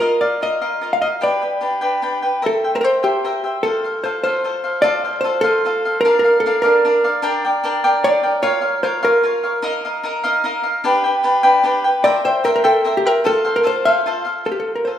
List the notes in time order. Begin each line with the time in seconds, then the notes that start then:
0.00 F4 A#4 D#5 F5
0.21 A#4 D5 D#5 F5
0.41 F4 A#4 D#5 F5
0.62 F4 A#4 D#5 F5
0.81 F4 A#4 D#5 F5
0.93 F5
1.02 A#4 D#5 F5
1.21 D4 G4 B4 D5 G5
1.42 G4 B4 G5
1.61 D4 G4 B4 G5
1.81 D4 G4 B4 G5
2.02 D4 G4 B4 G5
2.22 G4 B4 G5
2.42 A#4 C5 E5 G5
2.46 A4
2.64 C5 E5 G5
2.75 C5
2.81 A#4 C5 E5 G5
3.03 G4 A#4 C5 E5 G5
3.24 A#4 C5 E5 G5
3.44 C5 E5 G5
3.63 F4 A4 C5 F5
3.84 A4 C5 F5
4.04 F4 A4 C5 F5
4.24 F4 A4 C5 F5
4.44 F4 A4 C5 F5
4.64 A4 C5 F5
4.82 F4 A4 C5 D5 F5
5.04 A4 C5 F5
5.21 F4 A4 C5
5.25 C5 F5
5.41 A4 C5 F5
5.45 F4
5.65 F4 A4 C5 F5
5.85 A4 C5 F5
6.01 A#4
6.05 D4 A#4 D5 F5
6.19 A#4
6.24 A#4 D5 F5
6.40 A4
6.46 D4 A#4 D5 F5
6.62 D4 A#4 D5 F5
6.85 D4 A#4 D5 F5
7.04 A#4 D5 F5
7.22 D4 A#4 D5 G5
7.45 A#4 D5 G5
7.64 D4 A#4 D5 G5
7.84 D4 A#4 D5 G5
8.04 D4 A#4 D5 G5
8.23 A#4 D5 G5
8.42 F4 A#4 C#5 F5
8.61 A#4 C#5 F5
8.83 F4 A#4 C5 C#5 F5
9.03 F4 A#4 C#5 F5
9.23 F4 A#4 C#5 F5
9.43 A#4 C#5 F5
9.62 D#4 A#4 D#5 F5
9.85 A#4 D#5 F5
10.03 D#4 A#4 D#5 F5
10.24 D#4 A#4 D#5 F5
10.44 D#4 A#4 D#5 F5
10.63 A#4 D#5 F5
10.84 D4 G4 B4 G5
11.04 G4 B4 G5
11.23 D4 G4 B4 G5
11.43 D4 G4 B4 G5
11.63 D4 G4 B4 G5
11.84 G4 B4 G5
12.04 A#4 C5 D5 E5 G5
12.24 C5 E5 G5
12.44 A#4 C5 E5 G5
12.56 A#4
12.64 A4 A#4 C5 E5 G5
12.84 A#4 C5 E5 G5
12.97 G4
13.05 A#4 C5 E5 G5
13.24 F4 A4 C5 F5
13.45 A4 C5 F5
13.56 A#4
13.63 F4 A4 C5 F5
13.85 F4 A4 C5 F5
14.06 F4 A4 C5 F5
14.25 A4 C5 F5
14.45 F4 A4 C5 F5
14.52 G4
14.60 A4
14.76 A#4
14.85 F4 A4 C5 F5